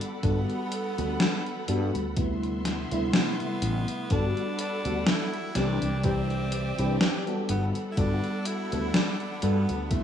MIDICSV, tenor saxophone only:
0, 0, Header, 1, 2, 480
1, 0, Start_track
1, 0, Key_signature, 1, "major"
1, 0, Tempo, 967742
1, 116, Time_signature, 4, 2, 24, 8
1, 4978, End_track
2, 0, Start_track
2, 0, Title_t, "Tenor saxophone"
2, 0, Program_c, 0, 66
2, 118, Note_on_c, 0, 59, 91
2, 1057, Note_off_c, 0, 59, 0
2, 1564, Note_on_c, 0, 59, 100
2, 2041, Note_on_c, 0, 62, 102
2, 2049, Note_off_c, 0, 59, 0
2, 2279, Note_off_c, 0, 62, 0
2, 2282, Note_on_c, 0, 62, 102
2, 2518, Note_on_c, 0, 64, 107
2, 2526, Note_off_c, 0, 62, 0
2, 2758, Note_on_c, 0, 62, 101
2, 2766, Note_off_c, 0, 64, 0
2, 3000, Note_on_c, 0, 60, 108
2, 3008, Note_off_c, 0, 62, 0
2, 3595, Note_off_c, 0, 60, 0
2, 3720, Note_on_c, 0, 59, 85
2, 3799, Note_off_c, 0, 59, 0
2, 3927, Note_on_c, 0, 64, 76
2, 3959, Note_on_c, 0, 62, 104
2, 3966, Note_off_c, 0, 64, 0
2, 4199, Note_on_c, 0, 64, 96
2, 4206, Note_off_c, 0, 62, 0
2, 4439, Note_on_c, 0, 62, 101
2, 4446, Note_off_c, 0, 64, 0
2, 4679, Note_on_c, 0, 59, 89
2, 4686, Note_off_c, 0, 62, 0
2, 4881, Note_off_c, 0, 59, 0
2, 4884, Note_on_c, 0, 59, 56
2, 4913, Note_on_c, 0, 57, 91
2, 4921, Note_off_c, 0, 59, 0
2, 4978, Note_off_c, 0, 57, 0
2, 4978, End_track
0, 0, End_of_file